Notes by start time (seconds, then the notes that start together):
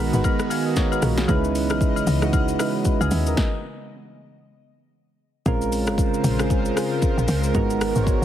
Already playing: A#1 D#3 G#3 B3 D#4 F#4 A#4
0.00 B5
0.13 G#1 G#3 B3 D#4 F#4 B4, shaker
0.24 A#5, kick, high agogo, shaker
0.40 cross-stick, shaker
0.50 B4 F5 G#5, open hi-hat, high agogo, shaker
0.66 A#4 D#5
0.76 G#4 C#5 D#5, kick, snare, shaker
0.92 F#4 B4, high agogo, shaker
1.02 A#1 F4 A#4, cross-stick, open hi-hat, shaker
1.18 D#4 G#4, snare, shaker
1.28 C#2 C#3 E3 G#3 C#4 D#4 E4 B4 D#5, kick, high agogo, shaker
1.44 shaker
1.55 open hi-hat, shaker
1.70 B1, cross-stick, high agogo, shaker
1.81 kick, shaker
1.96 high agogo, shaker
2.07 C#2, open hi-hat, shaker
2.22 G#3 C#4 D#4 E4 F#4, cross-stick, shaker
2.33 kick, high agogo, shaker
2.48 shaker
2.59 G#3 C#4 D#4 E4 B4, cross-stick, open hi-hat, high agogo, shaker
2.85 kick, shaker
3.01 C#2 D#5 G#5, high agogo, shaker
3.11 D#2 B4 E5, open hi-hat, shaker
3.26 A#4 D#5, shaker
3.37 kick, snare
5.46 A#1 C#3 G#3 C4 C#4 F4 A#4 C5, kick, shaker
5.62 shaker
5.72 open hi-hat, shaker
5.87 G#1, cross-stick, shaker
5.98 kick, shaker
6.14 shaker
6.24 A#1, open hi-hat, shaker
6.39 G#3 C4 C#4 F4 G#4, cross-stick, shaker
6.50 kick, shaker
6.65 shaker
6.76 G#3 C4 C#4 F4 G#4, cross-stick, open hi-hat, shaker
7.02 kick, shaker
7.18 A#1, shaker
7.28 C#2, open hi-hat, shaker
7.44 shaker
7.54 G#1 D#3 G#3 B3 D#4 F#4 A#4, kick, shaker
7.70 shaker
7.81 cross-stick, open hi-hat, shaker
7.96 G#1 G#3 B3 D#4 F#4 C5, shaker
8.04 C#5, kick, shaker